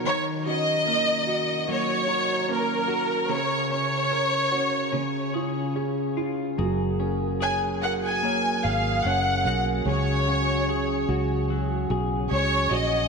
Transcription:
<<
  \new Staff \with { instrumentName = "Violin section" } { \time 4/4 \key fis \major \tempo 4 = 74 cis''8 dis''4. cis''4 ais'4 | cis''8 cis''2 r4. | r4 gis''8 fis''16 gis''8. eis''8 fis''8 fis''8 | cis''4. r4. cis''8 dis''8 | }
  \new Staff \with { instrumentName = "Clean electric guitar" } { \time 4/4 \key fis \major <dis ais'>8 cis'8 ais'8 fis'8 fis8 ais'8 cis'8 fis'8 | <cis ais'>8 cis'8 ais'8 fis'8 cis8 gis'8 cis'8 eis'8 | <fis gis'>8 cis'8 gis'8 fis'8 ais8 gis'8 cis'8 fis'8 | <cis gis'>8 cis'8 gis'8 fis'8 fis8 gis'8 cis'8 fis'8 | }
  \new Staff \with { instrumentName = "Grand piano" } { \time 4/4 \key fis \major dis8 fis'8 ais8 fis'8 ais8 fis'8 ais8 fis'8 | cis8 cis'8 ais'8 cis'8 cis8 eis'8 gis'8 eis'8 | fis8 ais'8 cis''8 ais'8 cis''8 ais'8 cis''8 ais'8 | cis8 fis'8 gis'8 fis'8 gis'8 fis'8 gis'8 fis'8 | }
  \new Staff \with { instrumentName = "Tonewheel organ" } { \time 4/4 \key fis \major r1 | r1 | <fis gis'>1~ | <fis gis'>1 | }
  \new Staff \with { instrumentName = "Tonewheel organ" } { \time 4/4 \key fis \major r1 | r1 | ais1 | cis'1 | }
  \new Staff \with { instrumentName = "Fingered electric bass" } { \clef bass \time 4/4 \key fis \major r1 | r1 | fis,,2~ fis,,8 gis,,8 fis,,8 b,,8 | cis,4. cis,4 b,,8 cis,8 ais,,8 | }
>>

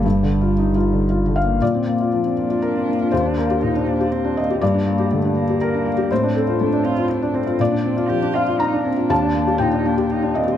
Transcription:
<<
  \new Staff \with { instrumentName = "Cello" } { \time 3/4 \key g \minor \tempo 4 = 120 g2~ g8 r8 | r4 d'2~ | d'4 ees'8 d'8 c'4 | bes4 a8 bes4. |
c'4 d'8 f'8 d'8 c'8 | d'4 g'8 f'8 ees'8 d'8~ | d'4 ees'8 d'8 ees'8 c'8 | }
  \new Staff \with { instrumentName = "Felt piano" } { \time 3/4 \key g \minor << { r2 r8 f''8 | d''2 bes'4 | c''8 bes'4. r8 ees''8 | d''2 bes'4 |
c''8 a'4. r4 | d''4. f''8 bes''4 | a''4 g''4. ees''8 | } \\ { \tuplet 3/2 { g,8 d8 f'8 ees'8 f'8 d8 f'8 d8 bes8 } | bes,16 c'16 bes16 f'16 f16 c'16 bes16 f'8 c'16 bes16 f'16 | ees,16 d'16 bes16 g'16 bes,16 d'16 bes16 g'8 d'16 bes16 g'16 | g,16 d'16 bes16 g'16 d16 d'16 bes16 g'8 d'16 bes16 g'16 |
a,16 d'16 c'16 f'16 a16 d'16 c'16 f'8 d'16 c'16 f'16 | bes,16 d'16 c'16 f'16 f16 d'16 c'16 f'8 d'16 c'16 f'16 | ees,16 d'16 bes16 g'16 bes,16 d'16 bes16 g'8 d'16 bes16 g'16 | } >> }
  \new Staff \with { instrumentName = "Sub bass" } { \clef bass \time 3/4 \key g \minor g,,2. | r2. | r2. | r2. |
r2. | r2. | r2. | }
>>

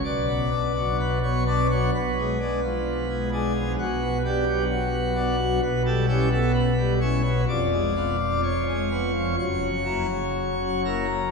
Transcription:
<<
  \new Staff \with { instrumentName = "Pipe organ" } { \time 4/4 \key b \minor \tempo 4 = 64 d''4 b'16 cis''16 d''16 cis''16 b'4. gis'8 | fis'8 g'8 fis'4 b'16 a'16 g'16 a'16 b'8 cis''8 | d''4 cis''4 cis''4. ais'8 | }
  \new Staff \with { instrumentName = "Pipe organ" } { \clef bass \time 4/4 \key b \minor << { b,16 b16 <b d'>16 fis8 b16 <b d'>16 fis16 b,16 gis16 <gis d'>16 f8 gis16 <gis d'>16 f16 | b,16 b16 <b d'>16 fis8 b16 <b d'>16 fis16 b,16 g16 <cis' e'>16 b8 g16 <cis' e'>16 b16 | f,16 aes16 <ces' f'>16 f8 aes16 <ces' f'>16 f16 fis,16 fis16 <ais e'>16 cis8 fis16 <ais e'>16 cis16 | } \\ { b,,2 b,,2 | b,,2 b,,2 | f,,2 fis,,2 | } >> }
>>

